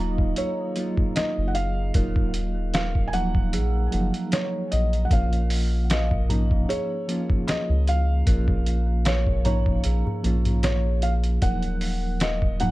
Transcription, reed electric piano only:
Already playing: F#3 A#3
0.00 D#4 F4
0.76 F#3 A#3 D#4 F4
1.94 F#3 A#3 D#4 F4
3.13 F3 F#3 A#3 D#4
3.91 F3 F#3 A#3 D#4
5.10 F3 A#3 C#4 F4
6.29 F3 A#3 C#4 D#4
7.08 F3 A#3 C#4 F4
8.26 F3 A#3 C#4 F4
9.45 F3 A#3 C#4 D#4
10.23 F3 A#3 C#4 F4
11.41 F3 F#3 A#3 D#4
12.60 F3 F#3 A#3 D#4

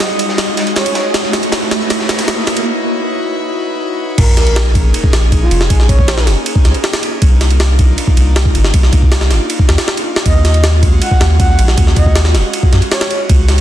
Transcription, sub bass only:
4.18 A#1
5.13 A#1
5.51 F1
5.70 A#1
5.89 A#1
6.27 F1
6.65 C#2
7.22 C2
8.17 C2
8.55 G1
8.74 C2
8.93 C2
9.31 G1
9.69 D#2
10.26 D#2
11.20 D#2
11.58 A#1
11.78 D#2
11.97 D#2
12.34 D#1
12.72 F#2
13.29 C#2

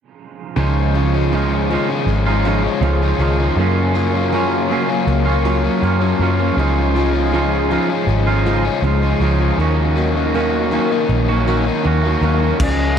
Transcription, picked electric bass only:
0.57 C#2
2.07 G#1
2.81 C#2
3.19 C#2
3.56 F#2
5.07 C#2
5.83 F#2
6.19 F#2
6.57 C#2
8.07 G#1
8.82 C#2
9.20 C#2
9.58 D#2
11.09 A#1
11.85 D#2
12.21 D#2
12.60 C#2

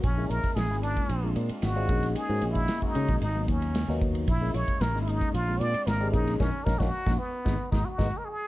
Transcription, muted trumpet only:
0.04 C#4
0.30 A#4
0.56 G#4
0.82 D4
1.63 F#4
2.17 G#4
2.51 E4
2.86 D#4
3.22 D#4
3.49 C#4
4.29 E4
4.55 C#5
4.82 A#4
5.01 E4
5.08 D#4
5.34 F4
5.60 D5
5.87 A#4
6.12 D#4
6.39 C#4
6.65 A#4
6.79 F#4
7.19 B3
7.72 D#4
7.85 F#4
8.18 A#4
8.25 G#4

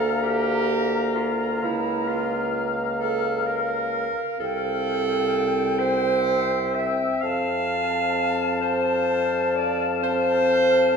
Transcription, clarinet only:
Already playing: A4
0.23 G4
1.16 F4
1.63 E4
2.08 F4
2.99 A4
3.46 A#4
4.40 A4
5.79 C5
6.75 E5
7.21 F5
8.61 C5
9.56 D5
10.04 C5

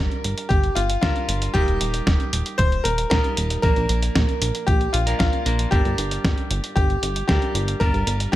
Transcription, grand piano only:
Already playing: A#4
0.49 G4
0.75 F4
1.01 F4
1.54 G4
2.58 C5
2.84 A#4
3.10 A#4
3.62 A#4
4.67 G4
4.93 F4
5.19 F4
5.71 G4
6.76 G4
7.28 G4
7.80 A#4
8.32 G4

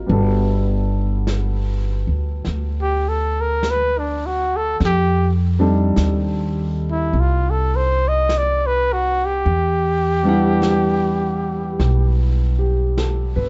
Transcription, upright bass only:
0.09 G1
2.07 D2
2.47 D2
4.81 F2
5.97 D#2
7.13 C2
9.46 E2
11.80 B1
13.36 G1

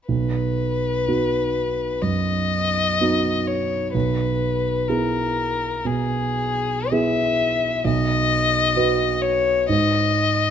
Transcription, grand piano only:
0.08 B1
1.08 B3 D#4 F#4
2.02 F#2
3.01 B3 D#4 F#4
3.94 B1
4.89 B3 E4 G#4
5.85 B2
6.92 B3 E4 G#4
7.85 B1
8.76 F#4 B4
9.69 G#2

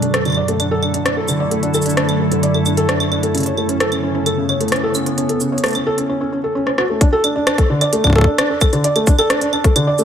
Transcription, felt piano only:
0.02 D4
0.14 A4
0.25 D3
0.37 D5
0.48 A3
0.60 D4
0.71 A4
0.83 D4
0.94 D4
1.06 D4
1.17 A4
1.28 D3
1.40 D5
1.51 A3
1.63 D4
1.74 A4
1.86 D4
1.97 D4
2.09 D4
2.20 A4
2.31 D3
2.43 D5
2.54 A3
2.66 D4
2.77 A4
2.89 D4
3.00 D4
3.12 D4
3.23 A4
3.35 C#3
3.46 C#5
3.57 A3
3.69 C#4
3.80 A4
3.92 C#4
4.03 C#4
4.15 C#4
4.26 A4
4.38 C#3
4.49 C#5
4.60 A3
4.72 C#4
4.83 A4
4.95 C#4
5.06 C#4
5.18 C#4
5.29 A4
5.41 C#3
5.52 C#5
5.64 A3
5.75 C#4
5.86 A4
5.98 C#4
6.09 C#4
6.21 C#4
6.32 C#4
6.44 A4
6.55 C#4
6.67 C#4
6.78 F#4
6.90 A3
7.01 D4
7.12 A4
7.24 D4
7.35 D4
7.47 D4
7.58 A4
7.70 D3
7.81 D5
7.93 A3
8.04 D4
8.16 A4
8.27 D4
8.38 D4
8.50 D4
8.61 A4
8.73 D3
8.84 D5
8.96 A3
9.07 D4
9.19 A4
9.30 D4
9.41 D4
9.53 D4
9.64 A4
9.76 D3
9.87 D5
9.99 A3

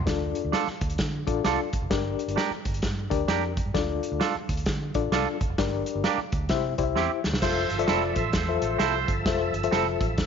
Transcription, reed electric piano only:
0.06 D4 F4 A4 D5
1.27 D4 F4 A4 D5
1.90 D4 G4 A#4 D5
3.10 D4 G4 A#4 D5
3.74 D4 F4 A4 D5
4.95 D4 F4 A4 D5
5.58 D4 G4 A#4 D5
6.50 E4 G4 C5 E5
6.78 E4 G4 C5 D5
6.84 E5
7.43 F4 A4 C5 E5
7.79 F4 A4 C5 E5
8.48 F4 A4 C5 E5
9.27 F4 A4 C5 E5
9.64 F4 A4 C5 E5

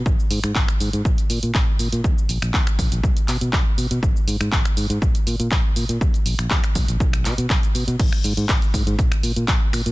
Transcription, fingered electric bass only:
0.06 G#1
0.31 G#2
0.44 G#2
0.55 G#1
0.81 G#2
0.93 G#2
1.05 A#1
1.30 A#2
1.43 A#2
1.55 A#1
1.79 A#2
1.93 A#2
2.29 A#1
2.42 A#1
2.54 D#2
2.79 A#1
2.92 A#1
3.28 B2
3.41 B2
3.53 B1
3.78 B2
3.91 B2
4.03 G#1
4.27 G#2
4.40 G#2
4.52 G#1
4.77 G#2
4.90 G#2
5.02 A#1
5.27 A#2
5.40 A#2
5.51 A#1
5.76 A#2
5.89 A#2
6.26 A#1
6.39 A#1
6.51 D#2
6.75 A#1
6.88 A#1
7.00 B1
7.25 B2
7.38 B2
7.50 B1
7.75 B2
7.87 B2
8.00 G#1
8.24 G#2
8.37 G#2
8.49 G#1
8.74 G#2
8.87 G#2
8.99 A#1
9.23 A#2
9.36 A#2
9.48 A#1
9.73 A#2
9.86 A#2

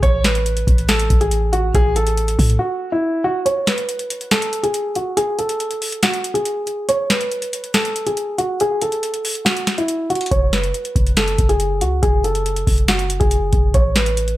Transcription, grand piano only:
0.03 C#5
0.24 B4
0.89 A4
1.21 G#4
1.53 F#4
1.75 G#4
1.96 A4
2.59 F#4
2.92 E4
3.24 F#4
3.46 C#5
3.67 B4
4.32 A4
4.63 G#4
4.96 F#4
5.17 G#4
5.39 A4
6.03 F#4
6.34 G#4
6.89 C#5
7.10 B4
7.74 A4
8.07 G#4
8.38 F#4
8.61 G#4
8.82 A4
9.45 F#4
9.78 E4
10.10 F#4
10.31 C#5
10.53 B4
11.17 A4
11.49 G#4
11.81 F#4
12.03 G#4
12.24 A4
12.89 F#4
13.20 G#4
13.74 C#5
13.96 B4

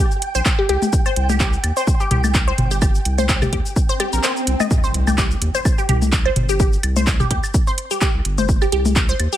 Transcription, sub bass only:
0.35 A#1
0.69 C2
1.16 C2
1.64 D#2
2.11 C2
2.58 G1
3.05 C2
3.53 D#2
4.13 A#1
4.47 C2
4.94 C2
5.42 D#2
5.89 C2
6.36 G1
6.83 C2
7.31 D#2
8.14 C2
8.25 G1
8.72 C2
9.20 D#2

